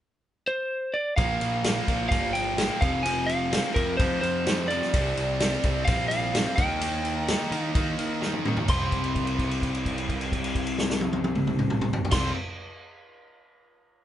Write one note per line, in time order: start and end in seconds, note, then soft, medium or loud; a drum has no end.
0.48 0.96 C5 medium
0.94 1.16 D5 medium
1.16 1.37 A#1 loud
1.16 1.62 A#2 medium
1.16 1.64 F3 medium
1.16 1.64 A#3 loud
1.16 2.07 F5 loud
1.16 kick loud
1.16 ride medium
1.41 1.79 A#1 medium
1.41 ride medium
1.64 1.87 A#2 medium
1.64 1.88 F3 medium
1.64 1.88 A#3 medium
1.64 snare loud
1.64 ride medium
1.88 2.07 A#1 medium
1.88 2.10 A#2 medium
1.88 2.11 F3 medium
1.88 2.12 A#3 medium
1.88 kick medium
1.88 ride medium
2.09 2.69 G1 loud
2.09 2.57 A#2 medium
2.09 2.58 F3 medium
2.09 2.34 F5 medium
2.09 kick loud
2.09 ride medium
2.13 2.58 A#3 medium
2.33 2.83 G5 loud
2.33 ride medium
2.58 2.81 A#2 medium
2.58 2.81 F3 medium
2.58 2.81 A#3 medium
2.58 snare loud
2.58 ride medium
2.81 3.59 F1 medium
2.81 3.04 F2 medium
2.81 3.04 C3 medium
2.81 3.05 F3 loud
2.81 3.03 F5 loud
2.81 kick loud
2.81 ride medium
3.03 3.51 F2 medium
3.03 3.52 C3 medium
3.03 3.52 F3 loud
3.03 3.29 G#5 loud
3.03 ride medium
3.26 3.71 F5 loud
3.26 ride medium
3.53 3.75 F2 medium
3.53 3.75 C3 medium
3.53 3.76 F3 medium
3.53 snare loud
3.53 ride medium
3.74 3.98 F2 medium
3.74 3.95 F2 loud
3.74 3.99 C3 medium
3.74 4.00 F3 medium
3.74 3.97 A#4 medium
3.74 kick medium
3.74 ride medium
3.97 4.46 F2 medium
3.97 4.19 F2 loud
3.97 4.47 C3 medium
3.97 4.47 F3 loud
3.97 4.20 C5 medium
3.97 kick loud
3.97 ride medium
4.21 4.81 F2 medium
4.21 4.66 C5 loud
4.21 ride medium
4.47 4.70 F2 medium
4.47 4.70 C3 medium
4.47 4.71 F3 medium
4.47 snare loud
4.47 ride medium
4.68 4.93 F2 medium
4.68 4.92 C3 medium
4.68 5.85 D5 loud
4.68 ride medium
4.72 4.93 F3 loud
4.82 snare soft
4.93 5.13 C2 loud
4.93 5.40 C3 loud
4.93 5.41 G3 loud
4.93 5.41 C4 loud
4.93 kick loud
4.93 ride medium
5.17 5.55 C2 medium
5.17 ride medium
5.40 5.63 C3 medium
5.40 5.65 G3 medium
5.40 5.64 C4 medium
5.40 snare loud
5.40 ride medium
5.63 5.83 C2 medium
5.63 5.86 C3 medium
5.63 5.88 G3 medium
5.63 5.87 C4 medium
5.63 kick medium
5.63 ride medium
5.85 6.45 A#1 loud
5.85 6.33 C3 medium
5.85 6.34 G3 medium
5.85 6.34 C4 loud
5.85 6.07 F5 loud
5.85 kick loud
5.85 ride medium
6.08 6.53 F5 loud
6.08 ride medium
6.34 6.56 C3 medium
6.34 6.58 G3 medium
6.34 6.57 C4 loud
6.34 snare loud
6.34 ride medium
6.56 7.35 D#2 loud
6.56 6.80 D#3 loud
6.56 6.81 A#3 loud
6.56 6.82 D#4 loud
6.56 7.63 G5 medium
6.56 kick loud
6.56 ride medium
6.81 7.27 D#3 medium
6.81 7.28 A#3 loud
6.81 7.29 D#4 loud
6.81 ride medium
7.05 ride medium
7.28 7.50 D#3 medium
7.28 7.50 A#3 medium
7.28 7.51 D#4 medium
7.28 snare loud
7.28 ride medium
7.51 7.74 D#3 medium
7.51 7.71 D#3 loud
7.51 7.74 A#3 medium
7.51 7.75 D#4 loud
7.51 ride medium
7.63 8.16 F5 medium
7.75 8.20 D#3 medium
7.75 7.94 D#3 loud
7.75 8.21 A#3 medium
7.75 8.22 D#4 loud
7.75 kick loud
7.75 ride medium
7.98 8.56 D#3 medium
7.98 ride medium
8.21 8.45 D#3 medium
8.21 8.45 A#3 medium
8.21 8.46 D#4 medium
8.21 snare medium
8.33 high tom medium
8.45 8.67 D#3 medium
8.45 8.68 A#3 medium
8.45 8.68 D#4 medium
8.45 mid tom medium
8.57 floor tom medium
8.68 12.02 C2 loud
8.68 12.12 C3 loud
8.68 12.14 G3 loud
8.68 12.15 C4 loud
8.68 12.03 C6 medium
8.68 kick loud
8.68 crash medium
8.92 kick medium
8.92 crash soft
9.04 crash soft
9.15 kick medium
9.15 crash soft
9.27 crash soft
9.39 kick medium
9.39 crash soft
9.51 crash soft
9.62 kick medium
9.62 crash soft
9.75 crash soft
9.86 kick medium
9.86 crash soft
9.98 crash soft
10.09 kick medium
10.09 crash soft
10.21 crash soft
10.32 kick medium
10.32 crash medium
10.44 crash medium
10.55 kick medium
10.55 crash soft
10.67 crash medium
10.78 snare medium
10.90 snare medium
11.01 high tom medium
11.13 high tom medium
11.24 high tom medium
11.35 mid tom medium
11.47 mid tom medium
11.59 mid tom medium
11.70 mid tom loud
11.81 mid tom loud
11.93 floor tom loud
12.05 floor tom loud
12.11 12.31 C2 medium
12.11 12.33 C3 loud
12.11 12.34 G3 medium
12.11 12.32 C6 medium
12.11 kick loud
12.11 snare loud
12.11 crash loud
12.16 12.35 C4 loud